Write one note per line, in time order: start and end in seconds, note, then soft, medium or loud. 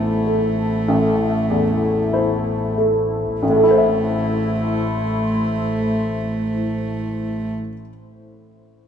0.00 0.84 A1 soft
0.00 3.42 A1 soft
0.00 1.50 E2 soft
0.00 2.78 A3 soft
0.00 3.37 A3 medium
0.00 0.22 E4 soft
0.00 3.41 E4 medium
0.00 3.41 A4 medium
0.00 0.23 C5 soft
0.27 1.25 A3 soft
0.88 3.38 A1 soft
1.50 2.51 E2 soft
2.13 2.73 E4 soft
2.13 2.74 C5 soft
2.78 3.42 A3 soft
3.42 7.53 A1 soft
3.42 7.52 A3 soft
3.42 7.55 A3 medium
3.42 7.55 E4 medium
3.42 7.55 C5 medium
3.50 7.60 A2 soft
3.57 7.67 A3 soft
3.63 7.74 E4 soft
3.71 7.81 C5 soft
3.78 7.88 E5 soft